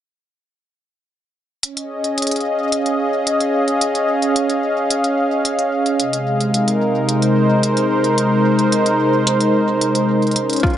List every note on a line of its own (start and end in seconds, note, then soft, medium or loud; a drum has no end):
1.63 6.00 C#4 medium
1.63 closed hi-hat medium
1.73 7.74 D#5 medium
1.73 closed hi-hat soft
1.83 7.74 G#4 medium
2.04 closed hi-hat soft
2.18 closed hi-hat medium
2.22 closed hi-hat medium
2.27 7.01 F5 medium
2.27 closed hi-hat soft
2.31 closed hi-hat medium
2.36 closed hi-hat soft
2.41 closed hi-hat soft
2.72 closed hi-hat medium
2.86 closed hi-hat soft
3.27 closed hi-hat medium
3.41 closed hi-hat soft
3.68 closed hi-hat soft
3.81 closed hi-hat medium
3.95 closed hi-hat medium
4.22 closed hi-hat soft
4.36 closed hi-hat medium
4.50 closed hi-hat soft
4.91 closed hi-hat medium
5.04 closed hi-hat soft
5.45 closed hi-hat medium
5.59 closed hi-hat medium
5.86 closed hi-hat soft
6.00 10.36 C3 medium
6.00 closed hi-hat medium
6.10 10.36 G#3 medium
6.10 closed hi-hat medium
6.41 closed hi-hat soft
6.47 10.77 D#4 medium
6.47 10.77 A#4 medium
6.54 closed hi-hat medium
6.68 closed hi-hat medium
7.05 10.77 C5 medium
7.05 closed hi-hat medium
7.22 closed hi-hat soft
7.63 closed hi-hat medium
7.77 closed hi-hat soft
8.04 closed hi-hat soft
8.18 closed hi-hat medium
8.59 closed hi-hat soft
8.72 closed hi-hat medium
8.86 closed hi-hat soft
9.27 closed hi-hat medium
9.41 closed hi-hat soft
9.81 closed hi-hat medium
9.95 closed hi-hat soft
10.22 closed hi-hat soft
10.27 closed hi-hat soft
10.31 closed hi-hat soft
10.36 10.77 C#4 medium
10.36 closed hi-hat medium
10.50 closed hi-hat soft
10.53 closed hi-hat soft
10.56 10.77 F5 medium
10.56 closed hi-hat soft
10.63 10.73 F4 medium
10.63 10.77 G#4 medium
10.63 kick loud
10.70 closed hi-hat soft
10.73 closed hi-hat soft